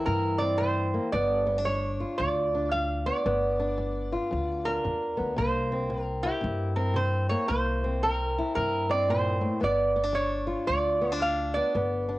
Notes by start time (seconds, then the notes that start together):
Already playing: E3 A#3 C4 E4
0.06 G2 C3 A#4
0.38 C4 D5
0.58 C3 C5
0.94 A#3
1.12 G1 G2 B3 D5
1.47 B3
1.58 D4
1.65 G2 C#5
2.00 F4
2.18 D2 G2 D5
2.55 D4
2.72 G2 F5
3.06 B3 D5
3.26 G1 G2 B3
3.60 D4
3.78 G2
4.13 F4
4.31 D2 G2
4.65 D4 A#4
4.84 E2 G2
5.17 D2 B3
5.36 C2 C3 A#3 C5
5.72 C4
5.90 C3
6.03 A#4
6.23 E4 G4
6.41 G2 C3
6.76 C4 A#4
6.94 C3 C5
7.29 A#3 C#5
7.48 C2 C3 A#3 C5
7.84 C4
8.03 C3 A#4
8.38 E4
8.55 G2 C3 A#4
8.89 C4 D5
9.09 A#2 C5
9.41 A2
9.60 G1 G2 B3 D5
9.96 B3
10.03 D4
10.13 G2 C#5
10.47 F4
10.67 D2 G2 D5
11.01 B3
11.11 D4 C5
11.21 G2 F5
11.54 B3 D5
11.75 G1 G2 B3
12.09 D4